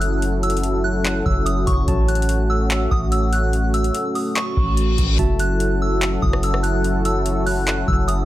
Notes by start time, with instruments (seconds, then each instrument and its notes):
Already playing: 808-style bass F#1, analog synth pad F#3 C#4 E4 F#4 A4, tine electric piano F#4 E5 A5
0.01 synth bell F#6, closed hi-hat
0.22 closed hi-hat
0.43 synth bell E6, closed hi-hat
0.50 closed hi-hat
0.57 closed hi-hat
0.63 closed hi-hat
0.84 synth bell F#6
1.05 clap, closed hi-hat
1.26 808-style bass F#1, synth bell E6, kick
1.46 synth bell D#6, closed hi-hat
1.67 808-style bass F#1, synth bell C#6, kick, closed hi-hat
1.88 808-style bass A1, analog synth pad A3 F#4, tine electric piano F#4 C#5 A5, kick, closed hi-hat
2.08 synth bell F#6, closed hi-hat
2.15 closed hi-hat
2.22 closed hi-hat
2.29 closed hi-hat
2.50 synth bell E6
2.70 clap, closed hi-hat
2.91 808-style bass A1, synth bell D#6, kick
3.12 synth bell E6, closed hi-hat
3.33 synth bell F#6, closed hi-hat
3.53 closed hi-hat
3.74 synth bell E6, closed hi-hat
3.84 closed hi-hat
3.95 closed hi-hat
4.15 synth bell D#6, open hi-hat
4.36 synth bell C#6, clap, closed hi-hat, reverse cymbal
4.57 808-style bass A1, kick
4.77 closed hi-hat
4.98 808-style bass A1, kick, closed hi-hat
5.19 808-style bass F#1, analog synth pad F#3 C#4 E4 F#4 A4, tine electric piano F#4 E5 A5, kick, closed hi-hat
5.39 synth bell F#6, closed hi-hat
5.60 closed hi-hat
5.82 synth bell E6
6.01 clap, closed hi-hat
6.22 808-style bass F#1, synth bell D#6, kick
6.33 cross-stick
6.43 synth bell E6, closed hi-hat
6.54 cross-stick
6.63 synth bell F#6, closed hi-hat
6.84 closed hi-hat
7.05 synth bell E6, closed hi-hat
7.26 closed hi-hat
7.46 synth bell F#6, open hi-hat
7.67 clap, closed hi-hat
7.88 808-style bass F#1, synth bell E6, kick
8.08 synth bell D#6, closed hi-hat